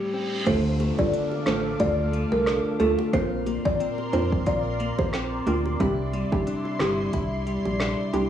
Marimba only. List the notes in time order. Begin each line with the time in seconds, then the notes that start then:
0.47 C5
0.99 D5
1.47 C5
1.80 D5
2.32 A#4
2.80 A4
3.13 C5
3.65 D5
4.13 C5
4.47 D5
4.99 C5